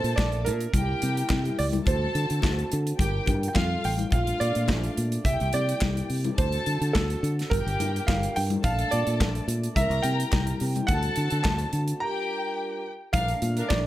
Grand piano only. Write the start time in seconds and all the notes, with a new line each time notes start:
Already playing: C5
0.16 D5
0.45 A#4
1.59 D5
1.87 C5
3.48 G5
3.55 F5
3.85 G5
4.13 F5
4.40 D5
5.25 E5
5.54 D5
6.38 C5
6.93 A4
7.50 A#4
8.07 F5
8.36 G5
8.64 F5
8.91 D5
9.76 E5
10.02 G5
10.87 F#5
11.43 A5
12.00 A#5
13.13 F5
13.69 D5